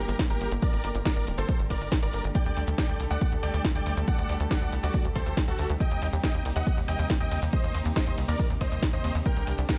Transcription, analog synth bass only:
0.08 0.15 G1 medium
0.30 0.37 G1 medium
0.41 0.48 G1 loud
0.51 0.58 G1 medium
0.73 0.80 G1 medium
0.84 0.91 G1 loud
0.95 1.02 G1 loud
1.16 1.23 G1 medium
1.27 1.34 D1 loud
1.38 1.45 G1 medium
1.59 1.66 G1 medium
1.70 1.77 G1 loud
1.81 1.88 G1 loud
2.03 2.10 G1 medium
2.13 2.20 G1 loud
2.24 2.31 G1 medium
2.46 2.53 D2 medium
2.57 2.64 D2 loud
2.67 2.74 D2 medium
2.89 2.96 D2 medium
3.00 3.07 C2 loud
3.11 3.17 D2 loud
3.32 3.39 D2 medium
3.43 3.50 D2 loud
3.54 3.61 D2 medium
3.75 3.82 D2 medium
3.86 3.93 D2 loud
3.97 4.04 D2 loud
4.18 4.25 D2 medium
4.29 4.36 D2 medium
4.40 4.47 D2 medium
4.62 4.69 D2 medium
4.72 4.79 C2 loud
4.83 4.90 D2 medium
5.05 5.12 D2 medium
5.16 5.22 D2 loud
5.26 5.33 D2 medium
5.48 5.55 D2 medium
5.59 5.66 D2 loud
5.70 5.76 D2 medium
5.91 5.98 D#2 medium
6.02 6.09 D#2 loud
6.13 6.20 D#2 medium
6.34 6.41 D#2 medium
6.45 6.52 C2 loud
6.56 6.63 D#2 loud
6.78 6.84 D#2 medium
6.88 6.95 D#2 loud
6.99 7.06 D#2 loud
7.21 7.28 D#2 medium
7.31 7.38 D#2 loud
7.42 7.49 D#2 medium
7.64 7.71 D#2 medium
7.74 7.81 D#2 loud
7.85 7.92 D#2 medium
8.07 8.14 D#2 medium
8.18 8.25 C2 loud
8.28 8.35 D#2 loud
8.50 8.57 D#2 medium
8.61 8.68 D#2 loud
8.72 8.79 D#2 medium
8.93 9.00 D#2 medium
9.04 9.11 D#2 loud
9.15 9.22 D#2 medium
9.36 9.43 C2 medium
9.47 9.54 C2 loud
9.58 9.65 C2 medium

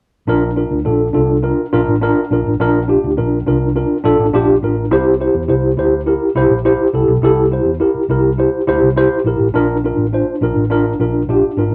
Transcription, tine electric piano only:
0.28 0.49 D4 loud
0.28 0.49 F4 medium
0.28 0.50 A#4 loud
0.56 0.78 D4 medium
0.56 0.78 F4 medium
0.56 0.78 A#4 medium
0.85 1.07 D4 medium
0.85 1.07 F4 medium
0.85 1.07 A4 medium
1.13 1.35 D4 medium
1.13 1.36 F4 medium
1.13 1.36 A4 medium
1.42 1.64 D4 medium
1.42 1.65 F4 medium
1.42 1.65 A#4 medium
1.73 1.94 D4 medium
1.73 1.94 F4 medium
1.73 1.95 A#4 loud
2.02 2.23 D4 loud
2.02 2.23 F4 medium
2.02 2.24 A#4 loud
2.31 2.52 D4 medium
2.31 2.53 F4 medium
2.31 2.53 A#4 medium
2.60 2.81 D4 loud
2.60 2.81 F4 medium
2.60 2.82 A#4 loud
2.88 3.10 D4 medium
2.88 3.10 F4 medium
2.88 3.10 G4 medium
3.17 3.39 D4 medium
3.17 3.39 F4 medium
3.17 3.39 A#4 medium
3.47 3.68 D4 medium
3.47 3.68 F4 medium
3.47 3.69 A#4 medium
3.75 3.97 D4 medium
3.75 3.97 F4 medium
3.75 3.97 A#4 medium
4.04 4.25 D4 loud
4.04 4.26 F4 medium
4.04 4.26 A4 loud
4.34 4.55 D4 loud
4.34 4.55 F4 medium
4.34 4.55 G4 loud
4.63 4.84 D4 medium
4.63 4.84 F4 medium
4.63 4.85 A#4 medium
4.91 5.13 E4 loud
4.91 5.13 G4 loud
4.91 5.13 C5 loud
5.20 5.42 E4 medium
5.20 5.42 G4 medium
5.20 5.42 C5 medium
5.48 5.70 E4 medium
5.48 5.70 G4 medium
5.48 5.71 C5 medium
5.77 5.99 E4 medium
5.77 6.00 G4 medium
5.77 6.00 C5 medium
6.06 6.28 E4 medium
6.06 6.28 G4 medium
6.06 6.28 A#4 medium
6.36 6.57 E4 loud
6.36 6.58 G4 medium
6.36 6.58 C5 loud
6.65 6.86 E4 loud
6.65 6.86 G4 medium
6.65 6.87 C5 loud
6.94 7.15 E4 medium
6.94 7.15 G4 medium
6.94 7.16 A4 medium
7.23 7.44 E4 loud
7.23 7.45 G4 medium
7.23 7.45 A4 loud
7.52 7.73 E4 medium
7.52 7.73 G4 medium
7.52 7.74 C5 medium
7.80 8.02 E4 medium
7.80 8.02 G4 medium
7.80 8.02 A#4 medium
8.10 8.31 E4 medium
8.10 8.31 G4 medium
8.10 8.32 A#4 medium
8.38 8.60 E4 medium
8.38 8.60 G4 medium
8.38 8.61 C5 medium
8.67 8.89 E4 loud
8.67 8.89 G4 medium
8.67 8.90 C5 loud
8.97 9.18 E4 loud
8.97 9.18 G4 medium
8.97 9.19 C5 loud
9.26 9.47 E4 medium
9.26 9.47 G4 medium
9.26 9.48 A#4 medium
9.54 9.76 D4 loud
9.54 9.76 F4 medium
9.54 9.76 A#4 loud
9.84 10.05 D4 medium
9.84 10.06 F4 medium
9.84 10.06 A#4 medium
10.13 10.34 D4 medium
10.13 10.34 F4 medium
10.13 10.35 C5 medium
10.42 10.63 D4 medium
10.42 10.63 F4 medium
10.42 10.64 A#4 medium
10.70 10.92 D4 medium
10.70 10.92 F4 medium
10.70 10.92 A#4 loud
11.00 11.21 D4 medium
11.00 11.21 F4 medium
11.00 11.22 A#4 medium
11.29 11.50 D4 medium
11.29 11.50 F4 medium
11.29 11.51 G4 medium
11.57 11.75 D4 medium
11.57 11.75 F4 medium
11.57 11.75 A#4 medium

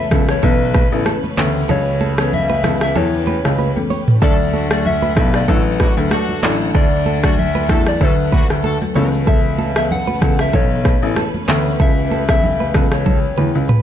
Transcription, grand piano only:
0.12 0.36 C#2 loud
0.43 0.80 B1 loud
0.92 1.03 A1 loud
1.38 1.62 D2 loud
1.69 2.60 C#2 loud
2.64 2.88 C#2 loud
2.96 3.33 E2 loud
3.45 3.69 C#2 medium
4.22 5.13 D2 loud
5.17 5.41 B1 loud
5.48 5.86 A1 loud
5.97 6.08 D2 medium
6.43 6.67 A1 medium
6.75 7.65 D2 loud
7.70 7.94 E2 loud
8.01 8.38 D2 loud
8.50 8.74 D2 medium
8.96 9.92 C#2 loud
10.22 10.46 C#2 loud
10.53 10.91 B1 loud
11.02 11.13 A1 loud
11.48 11.72 D2 medium
11.80 12.71 C#2 loud
12.75 13.23 C#2 medium
13.38 13.51 E2 medium
13.55 13.66 C#2 loud

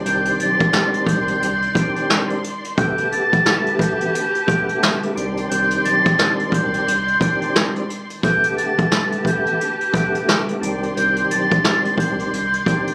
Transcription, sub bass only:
0.05 0.31 C2 loud
0.39 0.54 B1 medium
1.06 1.33 C2 medium
1.41 1.67 C2 loud
2.78 3.19 G1 loud
3.33 3.43 G1 medium
4.00 4.11 A1 medium
4.48 4.74 G1 loud
5.17 5.43 C2 loud
5.51 5.77 C2 loud
5.85 6.00 B1 medium
6.52 6.78 C2 loud
6.87 7.13 C2 loud
8.23 8.65 G1 loud
8.79 8.89 G1 loud
9.46 9.56 A1 medium
9.94 10.20 G1 loud
10.62 10.88 C2 loud
10.96 11.22 C2 loud
11.30 11.45 B1 medium
11.98 12.24 C2 loud
12.32 12.58 C2 loud

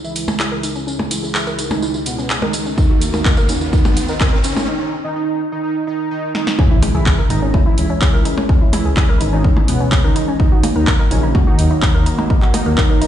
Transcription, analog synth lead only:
0.04 0.30 E4 medium
0.40 0.65 E4 medium
1.11 1.28 E4 medium
1.35 1.60 E4 loud
1.71 1.96 D#4 medium
2.06 2.32 B3 medium
2.42 2.68 D#4 loud
2.78 3.03 D#4 medium
3.14 3.39 D#4 medium
3.49 3.71 C#4 medium
3.73 3.99 D#4 loud
4.09 4.35 D#4 medium
4.44 4.66 C#4 medium
4.68 4.94 D#4 medium
5.04 5.14 D#4 medium
5.16 5.41 D#4 loud
5.52 5.62 D#4 medium
5.63 5.85 D#4 loud
5.87 6.09 D#4 loud
6.11 6.33 D#4 loud
6.35 6.57 D#4 loud
6.59 6.84 E4 medium
6.95 7.20 E4 loud
7.30 7.56 D#4 loud
7.66 7.92 E4 medium
8.02 8.27 E4 medium
8.73 8.90 E4 medium
8.97 9.22 E4 loud
9.33 9.58 D#4 medium
9.68 9.94 B3 loud
10.04 10.30 D#4 medium
10.40 10.65 D#4 medium
10.76 11.01 D#4 loud
11.11 11.37 C#4 loud
11.47 11.73 D#4 loud
11.82 12.08 D#4 loud
12.54 12.71 D#4 medium
12.78 13.03 D#4 loud

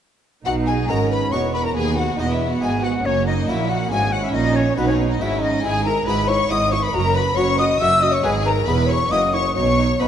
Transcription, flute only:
0.45 0.51 F#5 medium
0.67 0.88 G#5 medium
0.88 0.94 A#5 medium
1.10 1.33 B5 medium
1.32 1.56 C#6 medium
1.54 1.65 B5 medium
1.65 1.70 A#5 medium
1.76 1.82 G#5 medium
1.97 2.03 F#5 medium
2.19 2.30 D#5 medium
2.30 2.51 E5 medium
2.52 2.62 F#5 medium
2.63 2.85 G#5 medium
2.84 3.07 F#5 medium
3.06 3.26 C#5 medium
3.27 3.33 D#5 medium
3.49 3.72 E5 medium
3.71 3.91 F#5 medium
3.91 4.14 G#5 medium
4.12 4.25 F#5 medium
4.24 4.34 E5 medium
4.34 4.57 D#5 medium
4.56 4.76 C#5 medium
4.77 4.87 B4 medium
4.87 4.93 C#5 medium
5.10 5.22 D#5 medium
5.21 5.42 E5 loud
5.43 5.64 D#5 medium
5.64 5.85 G#5 loud
5.86 6.09 A#5 loud
6.07 6.30 B5 loud
6.29 6.50 C#6 medium
6.51 6.74 D#6 loud
6.72 6.85 C#6 medium
6.83 6.95 B5 medium
6.94 7.17 A#5 loud
7.16 7.39 B5 loud
7.37 7.58 C#6 loud
7.59 7.65 D#6 medium
7.81 8.04 E6 loud
8.03 8.15 D#6 loud
8.14 8.24 C#6 medium
8.25 8.31 G#5 loud
8.46 8.52 A#5 medium
8.68 8.74 B5 medium
8.90 9.13 C#6 medium
9.12 9.36 D#6 loud
9.34 9.55 C#6 medium
9.56 9.81 C#6 loud
10.01 10.08 B5 medium

